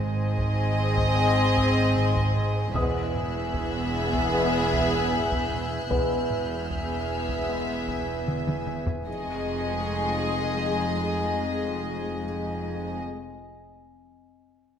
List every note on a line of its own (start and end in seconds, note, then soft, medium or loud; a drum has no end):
0.00 2.70 G#1 medium
0.00 2.71 G#2 medium
0.00 2.71 C4 medium
0.00 2.70 G#4 medium
0.00 2.70 C5 medium
0.00 2.71 D#5 medium
0.00 2.71 D#5 loud
0.00 2.71 G#5 medium
0.38 taiko medium
0.97 taiko medium
1.15 1.45 G#3 medium
1.15 1.45 C4 medium
1.56 taiko medium
1.96 taiko low-mid medium
2.16 taiko medium
2.36 taiko low-mid medium
2.75 5.89 E1 medium
2.75 5.89 E2 medium
2.75 3.05 G#3 medium
2.75 5.87 B3 medium
2.75 3.05 B3 medium
2.75 5.87 G#4 medium
2.75 5.90 B4 medium
2.75 5.87 E5 medium
2.75 5.90 E5 medium
2.75 5.88 G#5 medium
2.75 5.08 D#6 medium
2.75 8.64 E6 medium
2.75 6.58 F#6 medium
2.75 taiko loud
3.15 taiko low-mid medium
3.54 taiko medium
4.13 taiko medium
4.33 4.62 G#3 medium
4.33 4.62 B3 medium
4.33 8.65 G6 medium
4.73 taiko medium
5.12 taiko low-mid medium
5.32 taiko medium
5.51 taiko low-mid medium
5.90 8.83 E1 medium
5.90 8.82 E2 medium
5.90 6.19 G#3 medium
5.90 6.19 B3 medium
5.90 8.83 B3 medium
5.90 8.83 G#4 medium
5.90 8.24 B4 soft
5.90 9.03 B4 soft
5.90 8.82 E5 medium
5.90 9.03 E5 soft
5.90 9.03 G#5 soft
5.90 taiko loud
6.30 taiko low-mid medium
6.58 7.85 F6 medium
6.70 taiko medium
7.29 taiko medium
7.48 7.77 G#3 medium
7.48 7.77 B3 medium
7.88 taiko medium
8.28 taiko mid medium
8.47 taiko mid medium
8.67 taiko mid medium
8.87 taiko low medium
9.04 12.98 F1 medium
9.04 12.98 F2 medium
9.04 12.97 G#3 medium
9.04 12.98 G#3 medium
9.04 12.99 C4 soft
9.04 12.97 D#4 medium
9.04 12.99 G#4 medium
9.04 12.99 D#5 soft
9.04 12.99 D#5 medium
9.04 12.99 G#5 soft
9.04 10.53 C6 medium
9.04 10.53 C#6 medium
10.53 11.01 C6 medium